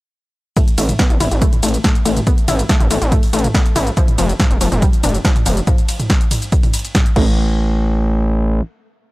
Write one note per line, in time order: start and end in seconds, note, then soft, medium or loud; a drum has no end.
0.57 0.61 A3 medium
0.57 kick loud
0.57 closed hi-hat medium
0.57 mid tom medium
0.57 ride medium
0.57 shaker soft
0.68 closed hi-hat medium
0.68 shaker soft
0.78 0.93 A1 loud
0.78 0.85 A3 medium
0.78 open hi-hat loud
0.78 ride medium
0.78 shaker medium
0.89 closed hi-hat medium
0.89 mid tom medium
0.89 shaker soft
0.99 1.03 B3 medium
0.99 kick loud
0.99 snare loud
0.99 closed hi-hat medium
0.99 ride medium
0.99 shaker soft
1.10 1.17 A1 loud
1.10 closed hi-hat medium
1.10 shaker soft
1.20 1.28 A1 loud
1.20 1.28 E4 medium
1.20 mid tom medium
1.20 open hi-hat loud
1.20 ride medium
1.20 shaker medium
1.31 1.46 A1 loud
1.31 closed hi-hat medium
1.31 shaker soft
1.42 1.46 A3 loud
1.42 kick loud
1.42 closed hi-hat medium
1.42 ride medium
1.42 shaker soft
1.53 closed hi-hat medium
1.53 mid tom medium
1.53 shaker soft
1.63 1.78 A1 loud
1.63 1.73 A3 medium
1.63 open hi-hat loud
1.63 ride medium
1.63 shaker medium
1.68 closed hi-hat medium
1.74 closed hi-hat medium
1.74 shaker soft
1.84 1.88 A3 medium
1.84 kick loud
1.84 snare loud
1.84 closed hi-hat medium
1.84 mid tom medium
1.84 ride medium
1.84 shaker soft
1.95 closed hi-hat medium
1.95 shaker soft
2.05 2.20 A1 medium
2.05 2.13 A3 medium
2.05 open hi-hat loud
2.05 ride medium
2.05 shaker medium
2.17 closed hi-hat medium
2.17 mid tom medium
2.17 shaker soft
2.27 2.31 B3 medium
2.27 kick loud
2.27 closed hi-hat medium
2.27 ride medium
2.27 shaker soft
2.38 closed hi-hat medium
2.38 shaker soft
2.48 2.63 A1 loud
2.48 2.55 E4 medium
2.48 mid tom medium
2.48 open hi-hat loud
2.48 ride medium
2.48 shaker medium
2.59 closed hi-hat medium
2.59 shaker soft
2.69 2.74 A3 loud
2.69 kick loud
2.69 snare loud
2.69 closed hi-hat medium
2.69 ride medium
2.69 shaker soft
2.80 2.87 A1 loud
2.80 closed hi-hat medium
2.80 mid tom medium
2.80 shaker soft
2.91 2.98 A1 loud
2.91 3.01 A3 medium
2.91 open hi-hat loud
2.91 ride medium
2.91 shaker medium
3.02 3.16 A1 loud
3.02 closed hi-hat medium
3.02 shaker soft
3.12 3.16 A3 medium
3.12 kick loud
3.12 closed hi-hat medium
3.12 mid tom medium
3.12 ride medium
3.12 shaker soft
3.23 open hi-hat medium
3.23 shaker soft
3.33 3.48 A1 medium
3.33 3.40 A3 medium
3.33 open hi-hat loud
3.33 ride medium
3.33 shaker medium
3.39 closed hi-hat medium
3.44 closed hi-hat medium
3.44 mid tom medium
3.44 shaker soft
3.54 3.59 B3 medium
3.54 kick loud
3.54 snare loud
3.54 closed hi-hat medium
3.54 ride medium
3.54 shaker soft
3.66 closed hi-hat medium
3.66 shaker soft
3.76 3.90 A1 medium
3.76 3.83 E4 medium
3.76 mid tom medium
3.76 open hi-hat loud
3.76 ride medium
3.76 shaker medium
3.87 closed hi-hat medium
3.87 shaker soft
3.97 4.01 F3 loud
3.97 kick loud
3.97 closed hi-hat medium
3.97 ride medium
3.97 shaker soft
4.08 closed hi-hat medium
4.08 mid tom medium
4.08 shaker soft
4.18 4.33 F1 loud
4.18 4.29 F3 medium
4.18 open hi-hat loud
4.18 ride medium
4.18 shaker medium
4.29 closed hi-hat medium
4.29 shaker soft
4.40 4.44 F3 medium
4.40 kick loud
4.40 snare loud
4.40 closed hi-hat medium
4.40 mid tom medium
4.40 ride medium
4.40 shaker soft
4.51 4.58 F1 loud
4.51 closed hi-hat medium
4.51 shaker soft
4.61 4.68 F1 loud
4.61 4.68 F3 medium
4.61 open hi-hat loud
4.61 ride medium
4.61 shaker medium
4.72 4.86 F1 loud
4.72 closed hi-hat medium
4.72 mid tom medium
4.72 shaker soft
4.82 4.86 G3 medium
4.82 kick loud
4.82 closed hi-hat medium
4.82 ride medium
4.82 shaker soft
4.93 closed hi-hat medium
4.93 shaker soft
5.03 5.18 F1 loud
5.03 5.11 D4 medium
5.03 mid tom medium
5.03 open hi-hat loud
5.03 ride medium
5.03 shaker medium
5.09 closed hi-hat medium
5.14 closed hi-hat medium
5.14 shaker soft
5.25 5.29 F3 loud
5.25 kick loud
5.25 snare loud
5.25 closed hi-hat medium
5.25 ride medium
5.25 shaker soft
5.36 closed hi-hat medium
5.36 mid tom medium
5.36 shaker soft
5.46 5.61 F1 medium
5.46 5.56 F3 medium
5.46 open hi-hat loud
5.46 ride medium
5.46 shaker medium
5.57 closed hi-hat medium
5.57 shaker soft
5.67 kick loud
5.67 closed hi-hat medium
5.67 mid tom medium
5.67 ride medium
5.67 shaker soft
5.78 closed hi-hat medium
5.78 shaker soft
5.89 open hi-hat loud
5.89 ride medium
5.89 shaker medium
6.00 closed hi-hat medium
6.00 mid tom medium
6.00 shaker soft
6.10 kick loud
6.10 snare loud
6.10 closed hi-hat medium
6.10 ride medium
6.10 shaker soft
6.21 closed hi-hat medium
6.21 shaker soft
6.31 mid tom medium
6.31 open hi-hat loud
6.31 ride medium
6.31 shaker medium
6.42 closed hi-hat medium
6.42 shaker soft
6.52 kick loud
6.52 closed hi-hat medium
6.52 ride medium
6.52 shaker soft
6.63 mid tom medium
6.63 open hi-hat medium
6.63 shaker soft
6.74 open hi-hat loud
6.74 ride medium
6.74 shaker medium
6.79 closed hi-hat medium
6.85 closed hi-hat medium
6.85 shaker soft
6.95 kick loud
6.95 snare loud
6.95 closed hi-hat medium
6.95 mid tom medium
6.95 ride medium
6.95 shaker soft
7.06 closed hi-hat medium
7.06 shaker soft
7.16 8.61 A1 loud
7.16 7.56 A3 medium
7.16 kick loud
7.16 crash medium